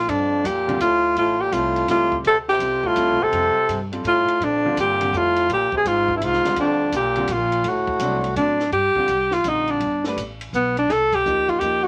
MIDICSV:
0, 0, Header, 1, 7, 480
1, 0, Start_track
1, 0, Key_signature, -2, "minor"
1, 0, Tempo, 360360
1, 112, Time_signature, 3, 2, 24, 8
1, 15820, End_track
2, 0, Start_track
2, 0, Title_t, "Alto saxophone"
2, 0, Program_c, 0, 65
2, 0, Note_on_c, 0, 65, 85
2, 125, Note_on_c, 0, 62, 81
2, 145, Note_off_c, 0, 65, 0
2, 614, Note_on_c, 0, 67, 85
2, 634, Note_off_c, 0, 62, 0
2, 1077, Note_off_c, 0, 67, 0
2, 1085, Note_on_c, 0, 65, 100
2, 1524, Note_off_c, 0, 65, 0
2, 1581, Note_on_c, 0, 65, 91
2, 1885, Note_on_c, 0, 67, 90
2, 1904, Note_off_c, 0, 65, 0
2, 2041, Note_on_c, 0, 65, 90
2, 2061, Note_off_c, 0, 67, 0
2, 2515, Note_off_c, 0, 65, 0
2, 2544, Note_on_c, 0, 65, 101
2, 2897, Note_off_c, 0, 65, 0
2, 3028, Note_on_c, 0, 69, 101
2, 3161, Note_off_c, 0, 69, 0
2, 3319, Note_on_c, 0, 67, 100
2, 3827, Note_on_c, 0, 65, 96
2, 3847, Note_off_c, 0, 67, 0
2, 4304, Note_on_c, 0, 69, 102
2, 4324, Note_off_c, 0, 65, 0
2, 5083, Note_off_c, 0, 69, 0
2, 5436, Note_on_c, 0, 65, 94
2, 5915, Note_on_c, 0, 62, 89
2, 5935, Note_off_c, 0, 65, 0
2, 6369, Note_off_c, 0, 62, 0
2, 6401, Note_on_c, 0, 67, 92
2, 6895, Note_on_c, 0, 65, 94
2, 6915, Note_off_c, 0, 67, 0
2, 7338, Note_off_c, 0, 65, 0
2, 7374, Note_on_c, 0, 67, 93
2, 7633, Note_off_c, 0, 67, 0
2, 7686, Note_on_c, 0, 68, 84
2, 7824, Note_on_c, 0, 65, 90
2, 7844, Note_off_c, 0, 68, 0
2, 8207, Note_off_c, 0, 65, 0
2, 8215, Note_on_c, 0, 64, 55
2, 8322, Note_on_c, 0, 65, 90
2, 8342, Note_off_c, 0, 64, 0
2, 8771, Note_off_c, 0, 65, 0
2, 8793, Note_on_c, 0, 62, 87
2, 9215, Note_off_c, 0, 62, 0
2, 9275, Note_on_c, 0, 67, 85
2, 9754, Note_on_c, 0, 65, 93
2, 9774, Note_off_c, 0, 67, 0
2, 10245, Note_on_c, 0, 66, 83
2, 10265, Note_off_c, 0, 65, 0
2, 11136, Note_off_c, 0, 66, 0
2, 11144, Note_on_c, 0, 62, 86
2, 11589, Note_off_c, 0, 62, 0
2, 11630, Note_on_c, 0, 67, 106
2, 12435, Note_on_c, 0, 65, 86
2, 12455, Note_off_c, 0, 67, 0
2, 12633, Note_on_c, 0, 63, 86
2, 12653, Note_off_c, 0, 65, 0
2, 12934, Note_on_c, 0, 62, 72
2, 12954, Note_off_c, 0, 63, 0
2, 13398, Note_off_c, 0, 62, 0
2, 14057, Note_on_c, 0, 59, 83
2, 14337, Note_off_c, 0, 59, 0
2, 14372, Note_on_c, 0, 62, 91
2, 14538, Note_on_c, 0, 69, 101
2, 14558, Note_off_c, 0, 62, 0
2, 14850, Note_on_c, 0, 67, 105
2, 14870, Note_off_c, 0, 69, 0
2, 15316, Note_on_c, 0, 65, 81
2, 15336, Note_off_c, 0, 67, 0
2, 15451, Note_on_c, 0, 67, 99
2, 15471, Note_off_c, 0, 65, 0
2, 15765, Note_on_c, 0, 66, 88
2, 15784, Note_off_c, 0, 67, 0
2, 15820, Note_off_c, 0, 66, 0
2, 15820, End_track
3, 0, Start_track
3, 0, Title_t, "Grand piano"
3, 0, Program_c, 1, 0
3, 902, Note_on_c, 1, 55, 69
3, 903, Note_on_c, 1, 50, 72
3, 912, Note_on_c, 1, 60, 63
3, 917, Note_on_c, 1, 65, 74
3, 1053, Note_off_c, 1, 50, 0
3, 1053, Note_off_c, 1, 55, 0
3, 1058, Note_off_c, 1, 60, 0
3, 1060, Note_off_c, 1, 65, 0
3, 2027, Note_on_c, 1, 60, 50
3, 2029, Note_on_c, 1, 55, 61
3, 2035, Note_on_c, 1, 69, 66
3, 2041, Note_on_c, 1, 65, 50
3, 2491, Note_off_c, 1, 60, 0
3, 2492, Note_off_c, 1, 55, 0
3, 2495, Note_off_c, 1, 69, 0
3, 2498, Note_off_c, 1, 65, 0
3, 2522, Note_on_c, 1, 55, 53
3, 2524, Note_on_c, 1, 60, 48
3, 2529, Note_on_c, 1, 65, 51
3, 2534, Note_on_c, 1, 67, 59
3, 2995, Note_off_c, 1, 55, 0
3, 2996, Note_off_c, 1, 60, 0
3, 2998, Note_off_c, 1, 65, 0
3, 3001, Note_off_c, 1, 67, 0
3, 3470, Note_on_c, 1, 55, 52
3, 3475, Note_on_c, 1, 60, 49
3, 3481, Note_on_c, 1, 65, 53
3, 3482, Note_on_c, 1, 69, 60
3, 3751, Note_off_c, 1, 55, 0
3, 3754, Note_off_c, 1, 60, 0
3, 3757, Note_off_c, 1, 65, 0
3, 3758, Note_off_c, 1, 69, 0
3, 3946, Note_on_c, 1, 55, 54
3, 3950, Note_on_c, 1, 60, 50
3, 3958, Note_on_c, 1, 69, 64
3, 3959, Note_on_c, 1, 65, 51
3, 4229, Note_off_c, 1, 55, 0
3, 4231, Note_off_c, 1, 60, 0
3, 4235, Note_off_c, 1, 69, 0
3, 4236, Note_off_c, 1, 65, 0
3, 4443, Note_on_c, 1, 55, 60
3, 4445, Note_on_c, 1, 65, 57
3, 4446, Note_on_c, 1, 60, 57
3, 4446, Note_on_c, 1, 69, 71
3, 4717, Note_off_c, 1, 55, 0
3, 4718, Note_off_c, 1, 65, 0
3, 4719, Note_off_c, 1, 60, 0
3, 4719, Note_off_c, 1, 69, 0
3, 5223, Note_on_c, 1, 55, 57
3, 5226, Note_on_c, 1, 60, 54
3, 5233, Note_on_c, 1, 65, 55
3, 5237, Note_on_c, 1, 69, 65
3, 5370, Note_off_c, 1, 55, 0
3, 5372, Note_off_c, 1, 60, 0
3, 5375, Note_off_c, 1, 65, 0
3, 5377, Note_off_c, 1, 69, 0
3, 6194, Note_on_c, 1, 50, 65
3, 6199, Note_on_c, 1, 55, 59
3, 6202, Note_on_c, 1, 60, 63
3, 6203, Note_on_c, 1, 65, 76
3, 6634, Note_off_c, 1, 50, 0
3, 6637, Note_off_c, 1, 55, 0
3, 6638, Note_off_c, 1, 60, 0
3, 6639, Note_off_c, 1, 65, 0
3, 6674, Note_on_c, 1, 50, 65
3, 6675, Note_on_c, 1, 55, 57
3, 6682, Note_on_c, 1, 60, 58
3, 6684, Note_on_c, 1, 67, 64
3, 6814, Note_off_c, 1, 50, 0
3, 6815, Note_off_c, 1, 55, 0
3, 6818, Note_off_c, 1, 60, 0
3, 6819, Note_off_c, 1, 67, 0
3, 8601, Note_on_c, 1, 50, 65
3, 8606, Note_on_c, 1, 55, 62
3, 8611, Note_on_c, 1, 65, 74
3, 8617, Note_on_c, 1, 60, 60
3, 9200, Note_off_c, 1, 50, 0
3, 9203, Note_off_c, 1, 55, 0
3, 9205, Note_off_c, 1, 65, 0
3, 9208, Note_off_c, 1, 60, 0
3, 9548, Note_on_c, 1, 50, 67
3, 9550, Note_on_c, 1, 55, 62
3, 9556, Note_on_c, 1, 60, 69
3, 9557, Note_on_c, 1, 65, 80
3, 9690, Note_off_c, 1, 50, 0
3, 9691, Note_off_c, 1, 55, 0
3, 9694, Note_off_c, 1, 60, 0
3, 9694, Note_off_c, 1, 65, 0
3, 10665, Note_on_c, 1, 54, 57
3, 10670, Note_on_c, 1, 60, 55
3, 10677, Note_on_c, 1, 57, 52
3, 10682, Note_on_c, 1, 62, 67
3, 10946, Note_off_c, 1, 54, 0
3, 10948, Note_off_c, 1, 60, 0
3, 10952, Note_off_c, 1, 57, 0
3, 10954, Note_off_c, 1, 62, 0
3, 11147, Note_on_c, 1, 54, 56
3, 11147, Note_on_c, 1, 57, 49
3, 11152, Note_on_c, 1, 62, 60
3, 11157, Note_on_c, 1, 60, 46
3, 11427, Note_off_c, 1, 54, 0
3, 11427, Note_off_c, 1, 57, 0
3, 11430, Note_off_c, 1, 62, 0
3, 11432, Note_off_c, 1, 60, 0
3, 11935, Note_on_c, 1, 50, 59
3, 11939, Note_on_c, 1, 55, 58
3, 11946, Note_on_c, 1, 65, 63
3, 11948, Note_on_c, 1, 60, 52
3, 12084, Note_off_c, 1, 50, 0
3, 12087, Note_off_c, 1, 55, 0
3, 12090, Note_off_c, 1, 65, 0
3, 12091, Note_off_c, 1, 60, 0
3, 12584, Note_on_c, 1, 50, 46
3, 12588, Note_on_c, 1, 55, 43
3, 12593, Note_on_c, 1, 60, 39
3, 12599, Note_on_c, 1, 65, 50
3, 13065, Note_off_c, 1, 50, 0
3, 13067, Note_off_c, 1, 55, 0
3, 13070, Note_off_c, 1, 60, 0
3, 13072, Note_off_c, 1, 65, 0
3, 13409, Note_on_c, 1, 57, 67
3, 13411, Note_on_c, 1, 62, 62
3, 13417, Note_on_c, 1, 67, 57
3, 13427, Note_on_c, 1, 71, 70
3, 13544, Note_off_c, 1, 57, 0
3, 13545, Note_off_c, 1, 62, 0
3, 13548, Note_off_c, 1, 67, 0
3, 13553, Note_off_c, 1, 71, 0
3, 14993, Note_on_c, 1, 53, 57
3, 14994, Note_on_c, 1, 58, 54
3, 14997, Note_on_c, 1, 63, 50
3, 15009, Note_on_c, 1, 67, 68
3, 15456, Note_off_c, 1, 53, 0
3, 15458, Note_off_c, 1, 58, 0
3, 15459, Note_off_c, 1, 63, 0
3, 15465, Note_off_c, 1, 67, 0
3, 15476, Note_on_c, 1, 53, 59
3, 15483, Note_on_c, 1, 58, 56
3, 15490, Note_on_c, 1, 63, 49
3, 15492, Note_on_c, 1, 67, 64
3, 15820, Note_off_c, 1, 53, 0
3, 15820, Note_off_c, 1, 58, 0
3, 15820, Note_off_c, 1, 63, 0
3, 15820, Note_off_c, 1, 67, 0
3, 15820, End_track
4, 0, Start_track
4, 0, Title_t, "Trombone"
4, 0, Program_c, 2, 57
4, 106, Note_on_c, 2, 41, 63
4, 607, Note_on_c, 2, 46, 72
4, 627, Note_off_c, 2, 41, 0
4, 1079, Note_off_c, 2, 46, 0
4, 1087, Note_on_c, 2, 45, 70
4, 1525, Note_off_c, 2, 45, 0
4, 1560, Note_on_c, 2, 45, 72
4, 1871, Note_on_c, 2, 46, 71
4, 1891, Note_off_c, 2, 45, 0
4, 2045, Note_on_c, 2, 45, 68
4, 2065, Note_off_c, 2, 46, 0
4, 2513, Note_off_c, 2, 45, 0
4, 2521, Note_on_c, 2, 45, 68
4, 2885, Note_off_c, 2, 45, 0
4, 3016, Note_on_c, 2, 48, 83
4, 3151, Note_off_c, 2, 48, 0
4, 3320, Note_on_c, 2, 48, 76
4, 3780, Note_on_c, 2, 45, 87
4, 3800, Note_off_c, 2, 48, 0
4, 4271, Note_on_c, 2, 48, 94
4, 4291, Note_off_c, 2, 45, 0
4, 5067, Note_off_c, 2, 48, 0
4, 5401, Note_on_c, 2, 45, 67
4, 5910, Note_on_c, 2, 41, 66
4, 5930, Note_off_c, 2, 45, 0
4, 6366, Note_off_c, 2, 41, 0
4, 6384, Note_on_c, 2, 46, 71
4, 6845, Note_on_c, 2, 45, 65
4, 6865, Note_off_c, 2, 46, 0
4, 7313, Note_off_c, 2, 45, 0
4, 7323, Note_on_c, 2, 46, 71
4, 7606, Note_off_c, 2, 46, 0
4, 7630, Note_on_c, 2, 48, 65
4, 7791, Note_on_c, 2, 44, 73
4, 7811, Note_off_c, 2, 48, 0
4, 8171, Note_off_c, 2, 44, 0
4, 8179, Note_on_c, 2, 43, 49
4, 8272, Note_on_c, 2, 44, 71
4, 8292, Note_off_c, 2, 43, 0
4, 8746, Note_off_c, 2, 44, 0
4, 8767, Note_on_c, 2, 41, 75
4, 9201, Note_off_c, 2, 41, 0
4, 9243, Note_on_c, 2, 46, 79
4, 9764, Note_off_c, 2, 46, 0
4, 9764, Note_on_c, 2, 46, 70
4, 10206, Note_on_c, 2, 45, 70
4, 10226, Note_off_c, 2, 46, 0
4, 11153, Note_off_c, 2, 45, 0
4, 15820, End_track
5, 0, Start_track
5, 0, Title_t, "Upright bass"
5, 0, Program_c, 3, 32
5, 108, Note_on_c, 3, 43, 79
5, 575, Note_off_c, 3, 43, 0
5, 584, Note_on_c, 3, 41, 86
5, 1053, Note_off_c, 3, 41, 0
5, 1065, Note_on_c, 3, 38, 90
5, 1533, Note_off_c, 3, 38, 0
5, 1538, Note_on_c, 3, 33, 78
5, 2009, Note_off_c, 3, 33, 0
5, 2020, Note_on_c, 3, 36, 89
5, 2490, Note_off_c, 3, 36, 0
5, 2505, Note_on_c, 3, 37, 86
5, 2972, Note_off_c, 3, 37, 0
5, 2982, Note_on_c, 3, 38, 79
5, 3444, Note_off_c, 3, 38, 0
5, 3452, Note_on_c, 3, 36, 83
5, 3924, Note_off_c, 3, 36, 0
5, 3935, Note_on_c, 3, 38, 95
5, 4115, Note_off_c, 3, 38, 0
5, 4115, Note_on_c, 3, 36, 54
5, 4268, Note_off_c, 3, 36, 0
5, 4276, Note_on_c, 3, 33, 56
5, 4413, Note_off_c, 3, 33, 0
5, 4421, Note_on_c, 3, 41, 82
5, 4716, Note_off_c, 3, 41, 0
5, 4905, Note_on_c, 3, 43, 84
5, 5370, Note_off_c, 3, 43, 0
5, 5379, Note_on_c, 3, 45, 90
5, 5674, Note_off_c, 3, 45, 0
5, 5860, Note_on_c, 3, 46, 78
5, 6327, Note_off_c, 3, 46, 0
5, 6344, Note_on_c, 3, 43, 91
5, 6809, Note_off_c, 3, 43, 0
5, 6830, Note_on_c, 3, 41, 96
5, 7291, Note_off_c, 3, 41, 0
5, 7307, Note_on_c, 3, 34, 82
5, 7597, Note_off_c, 3, 34, 0
5, 7790, Note_on_c, 3, 32, 81
5, 8251, Note_off_c, 3, 32, 0
5, 8261, Note_on_c, 3, 36, 87
5, 8553, Note_off_c, 3, 36, 0
5, 8743, Note_on_c, 3, 39, 83
5, 9207, Note_off_c, 3, 39, 0
5, 9221, Note_on_c, 3, 35, 83
5, 9686, Note_off_c, 3, 35, 0
5, 9696, Note_on_c, 3, 34, 96
5, 10161, Note_off_c, 3, 34, 0
5, 10168, Note_on_c, 3, 38, 82
5, 10636, Note_off_c, 3, 38, 0
5, 10644, Note_on_c, 3, 36, 94
5, 11117, Note_off_c, 3, 36, 0
5, 11131, Note_on_c, 3, 45, 85
5, 11602, Note_off_c, 3, 45, 0
5, 11609, Note_on_c, 3, 43, 76
5, 11907, Note_off_c, 3, 43, 0
5, 12086, Note_on_c, 3, 36, 82
5, 12560, Note_off_c, 3, 36, 0
5, 12570, Note_on_c, 3, 34, 84
5, 13043, Note_off_c, 3, 34, 0
5, 13050, Note_on_c, 3, 31, 79
5, 13524, Note_off_c, 3, 31, 0
5, 13540, Note_on_c, 3, 33, 84
5, 14010, Note_off_c, 3, 33, 0
5, 14026, Note_on_c, 3, 35, 89
5, 14491, Note_off_c, 3, 35, 0
5, 14499, Note_on_c, 3, 36, 75
5, 14972, Note_off_c, 3, 36, 0
5, 14992, Note_on_c, 3, 38, 85
5, 15449, Note_off_c, 3, 38, 0
5, 15457, Note_on_c, 3, 39, 84
5, 15820, Note_off_c, 3, 39, 0
5, 15820, End_track
6, 0, Start_track
6, 0, Title_t, "Muted upright bass strokes"
6, 4734, Note_on_c, 9, 29, 33
6, 4868, Note_off_c, 9, 29, 0
6, 5700, Note_on_c, 9, 29, 33
6, 5833, Note_off_c, 9, 29, 0
6, 7615, Note_on_c, 9, 29, 37
6, 7748, Note_off_c, 9, 29, 0
6, 8581, Note_on_c, 9, 29, 38
6, 8714, Note_off_c, 9, 29, 0
6, 11918, Note_on_c, 9, 29, 36
6, 12051, Note_off_c, 9, 29, 0
6, 15820, End_track
7, 0, Start_track
7, 0, Title_t, "Drums"
7, 111, Note_on_c, 9, 36, 23
7, 115, Note_on_c, 9, 51, 64
7, 244, Note_off_c, 9, 36, 0
7, 248, Note_off_c, 9, 51, 0
7, 591, Note_on_c, 9, 36, 24
7, 597, Note_on_c, 9, 44, 54
7, 597, Note_on_c, 9, 51, 68
7, 724, Note_off_c, 9, 36, 0
7, 730, Note_off_c, 9, 44, 0
7, 730, Note_off_c, 9, 51, 0
7, 913, Note_on_c, 9, 51, 41
7, 1046, Note_off_c, 9, 51, 0
7, 1068, Note_on_c, 9, 36, 24
7, 1070, Note_on_c, 9, 44, 54
7, 1070, Note_on_c, 9, 51, 68
7, 1202, Note_off_c, 9, 36, 0
7, 1203, Note_off_c, 9, 44, 0
7, 1203, Note_off_c, 9, 51, 0
7, 1549, Note_on_c, 9, 36, 20
7, 1551, Note_on_c, 9, 51, 57
7, 1682, Note_off_c, 9, 36, 0
7, 1684, Note_off_c, 9, 51, 0
7, 2027, Note_on_c, 9, 36, 26
7, 2029, Note_on_c, 9, 44, 66
7, 2029, Note_on_c, 9, 51, 67
7, 2160, Note_off_c, 9, 36, 0
7, 2162, Note_off_c, 9, 44, 0
7, 2162, Note_off_c, 9, 51, 0
7, 2344, Note_on_c, 9, 51, 42
7, 2477, Note_off_c, 9, 51, 0
7, 2504, Note_on_c, 9, 38, 38
7, 2506, Note_on_c, 9, 36, 21
7, 2506, Note_on_c, 9, 51, 63
7, 2637, Note_off_c, 9, 38, 0
7, 2639, Note_off_c, 9, 36, 0
7, 2639, Note_off_c, 9, 51, 0
7, 2822, Note_on_c, 9, 36, 52
7, 2956, Note_off_c, 9, 36, 0
7, 2986, Note_on_c, 9, 36, 22
7, 2988, Note_on_c, 9, 51, 62
7, 3119, Note_off_c, 9, 36, 0
7, 3122, Note_off_c, 9, 51, 0
7, 3307, Note_on_c, 9, 38, 38
7, 3440, Note_off_c, 9, 38, 0
7, 3463, Note_on_c, 9, 36, 18
7, 3464, Note_on_c, 9, 44, 58
7, 3464, Note_on_c, 9, 51, 70
7, 3597, Note_off_c, 9, 36, 0
7, 3597, Note_off_c, 9, 44, 0
7, 3597, Note_off_c, 9, 51, 0
7, 3776, Note_on_c, 9, 36, 46
7, 3909, Note_off_c, 9, 36, 0
7, 3939, Note_on_c, 9, 44, 55
7, 3939, Note_on_c, 9, 51, 71
7, 3943, Note_on_c, 9, 36, 23
7, 4072, Note_off_c, 9, 44, 0
7, 4072, Note_off_c, 9, 51, 0
7, 4076, Note_off_c, 9, 36, 0
7, 4424, Note_on_c, 9, 36, 20
7, 4430, Note_on_c, 9, 51, 60
7, 4558, Note_off_c, 9, 36, 0
7, 4563, Note_off_c, 9, 51, 0
7, 4908, Note_on_c, 9, 36, 18
7, 4914, Note_on_c, 9, 44, 54
7, 4914, Note_on_c, 9, 51, 61
7, 5041, Note_off_c, 9, 36, 0
7, 5047, Note_off_c, 9, 44, 0
7, 5047, Note_off_c, 9, 51, 0
7, 5228, Note_on_c, 9, 51, 45
7, 5361, Note_off_c, 9, 51, 0
7, 5388, Note_on_c, 9, 36, 25
7, 5391, Note_on_c, 9, 51, 58
7, 5521, Note_off_c, 9, 36, 0
7, 5525, Note_off_c, 9, 51, 0
7, 5704, Note_on_c, 9, 51, 45
7, 5837, Note_off_c, 9, 51, 0
7, 5871, Note_on_c, 9, 36, 25
7, 5880, Note_on_c, 9, 51, 60
7, 6004, Note_off_c, 9, 36, 0
7, 6013, Note_off_c, 9, 51, 0
7, 6349, Note_on_c, 9, 36, 24
7, 6354, Note_on_c, 9, 44, 64
7, 6354, Note_on_c, 9, 51, 71
7, 6482, Note_off_c, 9, 36, 0
7, 6488, Note_off_c, 9, 44, 0
7, 6488, Note_off_c, 9, 51, 0
7, 6669, Note_on_c, 9, 51, 70
7, 6802, Note_off_c, 9, 51, 0
7, 6831, Note_on_c, 9, 36, 20
7, 6836, Note_on_c, 9, 44, 67
7, 6964, Note_off_c, 9, 36, 0
7, 6970, Note_off_c, 9, 44, 0
7, 7143, Note_on_c, 9, 51, 48
7, 7276, Note_off_c, 9, 51, 0
7, 7312, Note_on_c, 9, 36, 22
7, 7320, Note_on_c, 9, 51, 63
7, 7445, Note_off_c, 9, 36, 0
7, 7453, Note_off_c, 9, 51, 0
7, 7623, Note_on_c, 9, 36, 57
7, 7756, Note_off_c, 9, 36, 0
7, 7792, Note_on_c, 9, 36, 18
7, 7798, Note_on_c, 9, 44, 58
7, 7798, Note_on_c, 9, 51, 68
7, 7925, Note_off_c, 9, 36, 0
7, 7931, Note_off_c, 9, 44, 0
7, 7931, Note_off_c, 9, 51, 0
7, 8103, Note_on_c, 9, 36, 56
7, 8237, Note_off_c, 9, 36, 0
7, 8270, Note_on_c, 9, 36, 20
7, 8277, Note_on_c, 9, 51, 69
7, 8404, Note_off_c, 9, 36, 0
7, 8411, Note_off_c, 9, 51, 0
7, 8435, Note_on_c, 9, 38, 26
7, 8568, Note_off_c, 9, 38, 0
7, 8583, Note_on_c, 9, 38, 43
7, 8595, Note_on_c, 9, 51, 49
7, 8716, Note_off_c, 9, 38, 0
7, 8728, Note_off_c, 9, 51, 0
7, 8741, Note_on_c, 9, 51, 67
7, 8743, Note_on_c, 9, 36, 26
7, 8874, Note_off_c, 9, 51, 0
7, 8876, Note_off_c, 9, 36, 0
7, 9222, Note_on_c, 9, 36, 26
7, 9222, Note_on_c, 9, 44, 58
7, 9222, Note_on_c, 9, 51, 67
7, 9355, Note_off_c, 9, 44, 0
7, 9355, Note_off_c, 9, 51, 0
7, 9356, Note_off_c, 9, 36, 0
7, 9532, Note_on_c, 9, 51, 47
7, 9665, Note_off_c, 9, 51, 0
7, 9690, Note_on_c, 9, 44, 64
7, 9690, Note_on_c, 9, 51, 71
7, 9697, Note_on_c, 9, 36, 30
7, 9823, Note_off_c, 9, 44, 0
7, 9823, Note_off_c, 9, 51, 0
7, 9830, Note_off_c, 9, 36, 0
7, 10016, Note_on_c, 9, 51, 49
7, 10149, Note_off_c, 9, 51, 0
7, 10176, Note_on_c, 9, 51, 64
7, 10177, Note_on_c, 9, 36, 27
7, 10309, Note_off_c, 9, 51, 0
7, 10310, Note_off_c, 9, 36, 0
7, 10488, Note_on_c, 9, 36, 60
7, 10621, Note_off_c, 9, 36, 0
7, 10648, Note_on_c, 9, 44, 63
7, 10648, Note_on_c, 9, 51, 65
7, 10651, Note_on_c, 9, 36, 21
7, 10781, Note_off_c, 9, 44, 0
7, 10781, Note_off_c, 9, 51, 0
7, 10784, Note_off_c, 9, 36, 0
7, 10971, Note_on_c, 9, 51, 46
7, 11105, Note_off_c, 9, 51, 0
7, 11134, Note_on_c, 9, 36, 22
7, 11138, Note_on_c, 9, 51, 64
7, 11267, Note_off_c, 9, 36, 0
7, 11271, Note_off_c, 9, 51, 0
7, 11449, Note_on_c, 9, 38, 36
7, 11582, Note_off_c, 9, 38, 0
7, 11613, Note_on_c, 9, 36, 24
7, 11618, Note_on_c, 9, 51, 52
7, 11746, Note_off_c, 9, 36, 0
7, 11752, Note_off_c, 9, 51, 0
7, 11927, Note_on_c, 9, 36, 50
7, 12060, Note_off_c, 9, 36, 0
7, 12089, Note_on_c, 9, 44, 51
7, 12089, Note_on_c, 9, 51, 58
7, 12094, Note_on_c, 9, 36, 22
7, 12222, Note_off_c, 9, 44, 0
7, 12222, Note_off_c, 9, 51, 0
7, 12227, Note_off_c, 9, 36, 0
7, 12402, Note_on_c, 9, 38, 46
7, 12535, Note_off_c, 9, 38, 0
7, 12573, Note_on_c, 9, 44, 56
7, 12573, Note_on_c, 9, 51, 66
7, 12577, Note_on_c, 9, 36, 19
7, 12706, Note_off_c, 9, 44, 0
7, 12706, Note_off_c, 9, 51, 0
7, 12710, Note_off_c, 9, 36, 0
7, 12886, Note_on_c, 9, 51, 39
7, 13019, Note_off_c, 9, 51, 0
7, 13058, Note_on_c, 9, 51, 55
7, 13060, Note_on_c, 9, 36, 21
7, 13191, Note_off_c, 9, 51, 0
7, 13193, Note_off_c, 9, 36, 0
7, 13373, Note_on_c, 9, 38, 48
7, 13507, Note_off_c, 9, 38, 0
7, 13544, Note_on_c, 9, 36, 20
7, 13552, Note_on_c, 9, 44, 63
7, 13552, Note_on_c, 9, 51, 63
7, 13677, Note_off_c, 9, 36, 0
7, 13686, Note_off_c, 9, 44, 0
7, 13686, Note_off_c, 9, 51, 0
7, 13863, Note_on_c, 9, 51, 57
7, 13997, Note_off_c, 9, 51, 0
7, 14024, Note_on_c, 9, 36, 23
7, 14029, Note_on_c, 9, 44, 51
7, 14157, Note_off_c, 9, 36, 0
7, 14163, Note_off_c, 9, 44, 0
7, 14345, Note_on_c, 9, 51, 45
7, 14478, Note_off_c, 9, 51, 0
7, 14507, Note_on_c, 9, 36, 18
7, 14515, Note_on_c, 9, 38, 37
7, 14517, Note_on_c, 9, 51, 55
7, 14640, Note_off_c, 9, 36, 0
7, 14649, Note_off_c, 9, 38, 0
7, 14650, Note_off_c, 9, 51, 0
7, 14819, Note_on_c, 9, 36, 71
7, 14823, Note_on_c, 9, 51, 64
7, 14952, Note_off_c, 9, 36, 0
7, 14956, Note_off_c, 9, 51, 0
7, 14989, Note_on_c, 9, 44, 52
7, 15122, Note_off_c, 9, 44, 0
7, 15298, Note_on_c, 9, 36, 40
7, 15301, Note_on_c, 9, 51, 39
7, 15431, Note_off_c, 9, 36, 0
7, 15435, Note_off_c, 9, 51, 0
7, 15461, Note_on_c, 9, 36, 24
7, 15462, Note_on_c, 9, 44, 58
7, 15462, Note_on_c, 9, 51, 65
7, 15595, Note_off_c, 9, 36, 0
7, 15595, Note_off_c, 9, 44, 0
7, 15595, Note_off_c, 9, 51, 0
7, 15820, End_track
0, 0, End_of_file